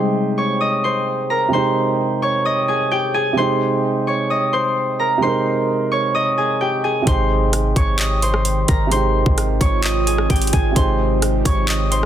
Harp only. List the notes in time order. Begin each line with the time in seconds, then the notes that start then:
Already playing: A#3 D#4 G#4 C5 D#5 C6
0.38 C#5 C#6
0.61 D#5 D#6
0.84 C5 C6
1.30 A#4 A#5
1.53 C5 C6
2.22 C#5 C#6
2.45 D#5 D#6
2.68 G#4 G#5
2.91 G4 G5
3.14 G#4 G#5
3.37 C5 C6
4.07 C#5 C#6
4.30 D#5 D#6
4.53 C5 C6
5.00 A#4 A#5
5.22 C5 C6
5.92 C#5 C#6
6.15 D#5 D#6
6.38 G#4 G#5
6.61 G4 G5
6.84 G#4 G#5
7.07 C5 C6
7.76 C#5 C#6
7.99 D#5 D#6
8.23 C5 C6
8.69 A#4 A#5
8.92 C5 C6
9.61 C#5 C#6
9.84 D#5 D#6
10.07 G#4 G#5
10.30 G4 G5
10.53 G#4 G#5
10.76 C5 C6
11.46 C#5 C#6
11.69 D#5 D#6
11.91 C5 C6